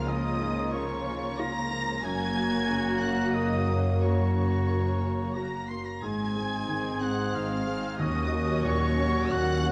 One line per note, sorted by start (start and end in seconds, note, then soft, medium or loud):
0.00 2.00 C#2 medium
0.00 0.11 G#2 soft
0.00 2.00 C#3 medium
0.00 2.00 F3 medium
0.00 0.27 A#3 soft
0.00 2.00 A#3 medium
0.00 0.10 C#4 medium
0.00 2.00 F4 medium
0.00 2.00 A#5 medium
0.07 1.99 C#2 medium
0.07 0.73 D#5 medium
0.07 0.73 D#6 loud
0.40 0.92 G#2 medium
0.72 1.26 A#3 medium
0.72 1.40 C#5 medium
0.72 1.39 C#5 medium
0.72 1.38 C#6 loud
1.06 1.59 C#4 medium
1.38 1.91 F4 medium
1.38 2.03 A#5 loud
1.38 2.04 A#5 loud
1.38 2.04 A#6 loud
1.71 2.04 A#3 medium
2.02 5.78 F#1 medium
2.02 3.97 F#2 medium
2.02 5.79 F#2 medium
2.02 5.65 F#3 medium
2.02 5.65 A#3 medium
2.02 3.97 A#3 medium
2.02 3.85 F#4 medium
2.02 3.97 F#4 medium
2.02 3.01 G#5 loud
2.02 3.04 G#5 loud
2.02 3.78 A#5 medium
2.02 3.01 G#6 loud
2.37 2.89 A#3 medium
2.69 3.21 C#3 medium
3.00 3.54 C#4 medium
3.00 3.33 F#5 medium
3.00 3.35 F#5 medium
3.00 3.34 F#6 loud
3.32 3.88 F#4 medium
3.32 3.77 D#5 medium
3.32 4.00 D#5 medium
3.32 3.99 D#6 medium
3.69 4.22 A#3 soft
4.01 5.99 F#2 medium
4.01 5.33 A#3 medium
4.01 5.33 F#4 medium
4.01 5.36 C#5 medium
4.01 5.33 A#5 medium
4.01 5.35 C#6 medium
4.34 4.88 C#3 soft
4.68 5.22 A#3 soft
5.01 5.55 C#4 soft
5.34 5.82 A#3 medium
5.34 5.89 F#4 soft
5.34 5.82 F#4 medium
5.34 5.70 F#4 soft
5.34 5.69 A#5 soft
5.34 5.70 A#5 medium
5.34 5.69 A#5 medium
5.34 5.68 A#6 medium
5.67 6.03 A#3 soft
5.67 5.86 C6 medium
5.67 5.85 C7 medium
5.85 6.01 A#5 medium
5.85 6.03 A#5 medium
5.85 6.03 A#6 medium
6.01 6.61 G#1 medium
6.01 7.96 G#2 medium
6.01 6.61 G#2 medium
6.01 7.96 G#3 medium
6.01 7.96 C4 medium
6.01 8.00 G#4 medium
6.01 7.02 G#5 medium
6.01 7.96 C6 medium
6.01 7.02 G#6 loud
6.36 6.89 G#3 soft
6.36 7.02 C4 medium
6.36 7.01 D#4 medium
6.69 7.27 G#1 medium
6.69 7.27 G#2 medium
6.69 7.22 D#3 soft
7.01 7.54 C4 medium
7.01 7.66 C4 medium
7.01 7.66 D#4 medium
7.01 7.35 F#5 medium
7.01 7.35 F#6 medium
7.35 7.93 G#1 medium
7.35 7.93 G#2 medium
7.35 7.87 D#4 medium
7.35 8.00 F5 medium
7.35 8.02 F5 medium
7.35 8.01 F6 medium
7.67 8.00 G#3 medium
7.67 8.00 C4 medium
7.67 8.00 D#4 medium
7.98 9.72 D#2 medium
7.98 8.58 D#2 medium
7.98 9.72 F#3 loud
7.98 9.72 C#4 medium
7.98 8.33 C#4 medium
7.98 8.63 F#4 medium
7.98 8.33 F#4 medium
7.98 8.64 D#5 medium
7.98 8.66 D#5 loud
7.98 8.64 C#6 medium
7.98 8.65 D#6 loud
8.33 8.86 A#3 medium
8.33 8.97 C#4 medium
8.33 8.98 F#4 medium
8.63 9.25 D#2 medium
8.63 9.25 D#2 loud
8.63 9.19 A#2 medium
8.63 9.30 F#4 medium
8.63 9.33 C#5 medium
8.63 9.31 C#6 medium
8.63 9.33 C#6 loud
8.98 9.52 C#4 medium
8.98 9.64 C#4 medium
8.98 9.64 F#4 medium
9.31 9.72 D#2 loud
9.31 9.72 D#2 medium
9.31 9.72 F#4 medium
9.31 9.72 F#5 loud
9.31 9.72 C#6 medium
9.31 9.72 F#6 loud
9.65 9.72 A#3 medium
9.65 9.72 C#4 medium
9.65 9.72 F#4 medium